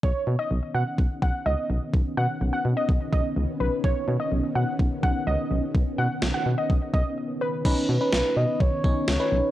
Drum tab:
CC |--------|--------|--------|--------|
SD |--------|--------|--------|--o-----|
BD |o---oo--|o---oo--|o---oo--|o---oo--|

CC |x-------|
SD |--o---o-|
BD |o---oo--|